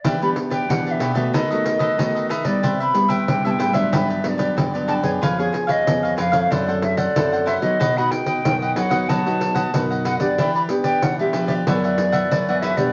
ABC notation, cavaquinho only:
X:1
M:4/4
L:1/16
Q:1/4=93
K:Em
V:1 name="Cavaquinho"
[EGBd] [GBd] z [GBd]2 [GBd] [EGBd] [GBd] [^DAB^d] [ABd] z [ABd] [DABd] [ABd] [DABd]2 | [GBce] [Bce] z [Bce]2 [Bce] [GBce] [Bce] [FGBd] [GBd] z [GBd] [FGBd] [GBd] [FGBd]2 | [^EB^c^e] [Bce] z [Bce]2 [Bce] [EBce] [Bce] [=EA=cf] [Acf] z [Acf] [EAcf] [Acf] [EAcf]2 | [FB^df] [Bdf] z [Bd]2 [Bdf] [FBdf] [Bdf] [FBdf] [Bdf] z [Bdf] [FBdf] [Bdf] [FBdf]2 |
[EGBd] [GBd] z [GBd]2 [GBd] [EGBd] [GBd] [FBef] [Bef] z [Bef] [FBef] [Bef] [FBef]2 |]